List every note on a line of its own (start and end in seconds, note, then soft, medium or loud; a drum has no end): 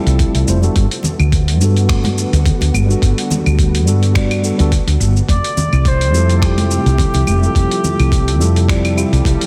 0.00 0.72 C3 medium
0.00 0.72 F3 medium
0.00 0.44 G3 medium
0.00 5.25 A3 medium
0.00 0.44 C4 medium
0.00 0.45 E4 medium
0.00 0.45 F4 medium
0.00 0.45 G4 medium
0.00 0.74 A4 medium
0.00 0.72 E5 medium
0.06 0.23 C2 medium
0.06 closed hi-hat soft
0.06 cabasa soft
0.19 kick loud
0.19 closed hi-hat medium
0.19 cabasa soft
0.35 0.43 C2 medium
0.35 closed hi-hat soft
0.35 cabasa soft
0.46 0.67 F1 medium
0.46 0.59 G3 medium
0.46 0.59 C4 medium
0.46 0.59 E4 medium
0.46 0.60 F4 medium
0.46 0.60 C5 medium
0.46 cabasa medium
0.61 0.84 G3 medium
0.61 0.84 B3 medium
0.61 0.85 D4 medium
0.61 0.85 F#4 medium
0.61 0.85 A4 medium
0.61 high conga medium
0.61 cabasa soft
0.76 0.86 G1 medium
0.76 5.25 D3 medium
0.76 5.25 G3 medium
0.76 5.25 B3 medium
0.76 5.25 F#4 medium
0.76 kick loud
0.76 closed hi-hat medium
0.76 cabasa soft
0.91 closed hi-hat soft
0.91 cabasa soft
1.03 muted conga soft
1.03 low conga medium
1.03 cabasa medium
1.19 1.61 D2 medium
1.19 cabasa soft
1.19 claves medium
1.32 kick loud
1.32 closed hi-hat medium
1.32 cabasa soft
1.48 closed hi-hat soft
1.48 cabasa soft
1.57 2.24 G2 medium
1.57 2.84 G3 medium
1.57 2.85 B3 medium
1.57 2.86 D4 medium
1.57 high conga medium
1.57 cabasa medium
1.62 2.87 F#4 medium
1.62 2.87 A4 medium
1.77 closed hi-hat soft
1.77 cabasa soft
1.89 finger snap medium
1.89 kick loud
1.89 closed hi-hat medium
1.89 cabasa soft
2.04 closed hi-hat soft
2.04 high conga medium
2.04 cabasa soft
2.18 cabasa medium
2.33 2.50 D2 medium
2.33 closed hi-hat soft
2.33 cabasa soft
2.45 kick loud
2.45 closed hi-hat medium
2.45 low conga medium
2.45 cabasa soft
2.61 2.69 D2 medium
2.61 closed hi-hat soft
2.61 muted conga medium
2.61 cabasa soft
2.74 2.93 G1 loud
2.74 high conga medium
2.74 cabasa medium
2.74 claves medium
2.86 3.82 G3 medium
2.86 3.83 B3 medium
2.86 3.84 D4 medium
2.90 3.85 F#4 medium
2.90 3.85 A4 medium
2.90 cabasa soft
3.02 3.12 G1 medium
3.02 kick loud
3.02 closed hi-hat medium
3.02 cabasa soft
3.18 closed hi-hat soft
3.18 cabasa soft
3.30 muted conga medium
3.30 high conga medium
3.30 low conga medium
3.30 cabasa medium
3.46 3.87 D2 medium
3.46 cabasa soft
3.46 claves medium
3.59 kick medium
3.59 closed hi-hat medium
3.59 cabasa soft
3.75 closed hi-hat soft
3.75 cabasa soft
3.85 4.50 G2 medium
3.85 4.12 G3 medium
3.85 4.12 B3 medium
3.85 4.12 D4 medium
3.85 4.13 F#4 medium
3.85 4.13 A4 medium
3.85 high conga medium
3.85 cabasa medium
4.03 closed hi-hat soft
4.03 cabasa soft
4.14 4.40 G3 medium
4.14 4.40 B3 medium
4.14 4.41 D4 medium
4.14 4.41 F#4 medium
4.14 4.42 D5 medium
4.14 finger snap medium
4.14 kick loud
4.14 closed hi-hat medium
4.14 cabasa soft
4.31 closed hi-hat soft
4.31 cabasa soft
4.31 claves medium
4.42 4.55 G3 medium
4.42 4.55 B3 medium
4.42 4.55 D4 medium
4.42 4.56 F#4 medium
4.42 4.56 A4 medium
4.42 cabasa medium
4.58 4.77 D2 medium
4.58 4.71 G3 medium
4.58 4.71 B3 medium
4.58 4.72 D4 medium
4.58 4.72 F#4 medium
4.58 4.73 A4 medium
4.58 closed hi-hat soft
4.58 cabasa soft
4.72 kick medium
4.72 closed hi-hat medium
4.72 cabasa soft
4.87 4.96 D2 medium
4.87 closed hi-hat soft
4.87 cabasa soft
5.00 5.19 G1 loud
5.00 cabasa medium
5.17 cabasa soft
5.29 5.39 F1 loud
5.29 9.46 C3 medium
5.29 9.46 F3 medium
5.29 9.46 A3 medium
5.29 7.53 G4 medium
5.29 5.89 D5 loud
5.29 9.46 E5 medium
5.29 kick medium
5.29 closed hi-hat medium
5.29 cabasa soft
5.44 closed hi-hat soft
5.44 cabasa soft
5.57 muted conga soft
5.57 low conga medium
5.57 cabasa medium
5.73 6.14 C2 medium
5.73 cabasa soft
5.73 claves medium
5.85 6.37 C5 loud
5.85 kick loud
5.85 closed hi-hat medium
5.85 cabasa soft
6.01 closed hi-hat soft
6.01 cabasa soft
6.10 6.77 F2 medium
6.10 7.37 G3 medium
6.10 7.38 C4 medium
6.10 7.39 E4 medium
6.10 high conga medium
6.14 7.39 F4 medium
6.14 7.40 A4 medium
6.14 cabasa medium
6.29 closed hi-hat soft
6.29 cabasa soft
6.38 6.47 A4 medium
6.42 9.27 G4 medium
6.42 finger snap medium
6.42 kick loud
6.42 closed hi-hat medium
6.42 cabasa soft
6.58 closed hi-hat soft
6.58 high conga medium
6.58 cabasa soft
6.71 cabasa medium
6.86 7.03 C2 medium
6.86 closed hi-hat soft
6.86 cabasa soft
6.98 kick loud
6.98 closed hi-hat medium
6.98 low conga medium
6.98 cabasa soft
7.14 7.22 C2 medium
7.14 closed hi-hat soft
7.14 muted conga medium
7.14 cabasa soft
7.27 7.46 F1 loud
7.27 high conga medium
7.27 cabasa medium
7.27 claves medium
7.39 8.36 G3 medium
7.39 8.36 C4 medium
7.39 8.37 E4 medium
7.39 cabasa soft
7.44 8.38 F4 medium
7.44 8.39 A4 medium
7.55 7.65 F1 medium
7.55 9.46 A4 medium
7.55 kick medium
7.55 closed hi-hat medium
7.55 cabasa soft
7.71 closed hi-hat soft
7.71 cabasa soft
7.84 muted conga medium
7.84 high conga medium
7.84 low conga medium
7.84 cabasa medium
7.99 8.41 C2 medium
7.99 closed hi-hat soft
7.99 cabasa soft
7.99 claves medium
8.12 kick medium
8.12 closed hi-hat medium
8.12 cabasa soft
8.28 closed hi-hat soft
8.28 cabasa soft
8.39 9.03 F2 medium
8.39 8.65 G3 medium
8.39 8.65 C4 medium
8.39 8.65 E4 medium
8.39 8.66 F4 medium
8.39 8.66 A4 medium
8.39 muted conga soft
8.39 high conga medium
8.39 cabasa medium
8.56 closed hi-hat soft
8.56 cabasa soft
8.67 8.93 G3 medium
8.67 8.94 C4 medium
8.67 8.94 E4 medium
8.67 8.94 F4 medium
8.67 8.95 D5 medium
8.67 finger snap medium
8.67 kick loud
8.67 closed hi-hat medium
8.67 swell medium
8.67 cabasa soft
8.85 closed hi-hat soft
8.85 cabasa soft
8.85 claves medium
8.95 9.46 G3 medium
8.95 9.46 C4 medium
8.95 9.46 E4 medium
8.95 9.46 F4 medium
8.95 9.46 G4 medium
8.95 cabasa medium
8.95 claves medium
9.13 9.24 C2 medium
9.13 closed hi-hat soft
9.13 cabasa soft
9.25 9.35 C2 loud
9.25 kick loud
9.25 closed hi-hat medium
9.25 cabasa soft
9.41 closed hi-hat soft
9.41 cabasa soft